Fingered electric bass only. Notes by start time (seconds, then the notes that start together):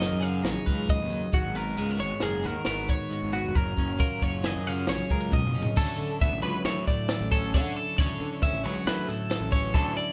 0.11 F#2
0.44 A#1
0.67 C#2
1.00 D#2
1.33 G#1
1.78 C#2
2.01 G#1
2.23 F#1
2.45 D#2
2.67 G#1
3.23 G#1
3.44 F1
3.56 F#1
3.78 F#1
4.22 F#1
4.56 F#2
4.88 A#1
5.11 C#2
5.43 F#1
5.77 D2
5.98 D3
6.21 D2
6.32 A1
6.42 C#2
6.64 D2
7.21 A1
7.54 D3
7.99 D2
8.20 D3
8.43 D2
8.53 A1
8.65 C#2
8.86 D2
9.40 A1
9.74 D2